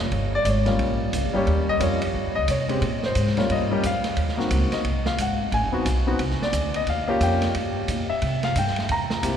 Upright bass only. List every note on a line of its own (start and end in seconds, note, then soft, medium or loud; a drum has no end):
0.00 0.11 F1 medium
0.12 0.44 G1 medium
0.45 0.78 G#1 medium
0.79 1.12 A#1 medium
1.13 1.24 C#2 medium
1.24 1.34 A#1 medium
1.35 1.46 G1 medium
1.47 1.80 D#2 medium
1.80 2.13 F2 medium
2.15 2.27 G2 medium
2.26 2.37 D#2 soft
2.37 2.48 C#2 medium
2.48 2.81 C3 medium
2.81 3.15 A#2 medium
3.15 3.48 G#2 medium
3.49 3.82 G2 medium
3.83 4.16 F2 medium
4.16 4.50 D#2 medium
4.50 4.70 C#2 medium
4.72 muted upright bass stroke soft
4.84 5.17 C2 medium
5.18 5.51 G#1 medium
5.52 5.63 A1 medium
5.63 5.74 F#1 medium
5.75 5.85 D#1 medium
5.85 6.18 B1 medium
6.19 6.39 C2 medium
6.52 6.86 D2 medium
6.87 7.20 D#2 medium
7.20 7.53 F2 loud
7.54 7.87 G2 medium
7.88 8.08 A#2 medium
8.09 muted upright bass stroke soft
8.22 8.55 C3 medium
8.55 8.88 G2 medium
8.89 9.22 E2 medium
9.23 9.37 C2 medium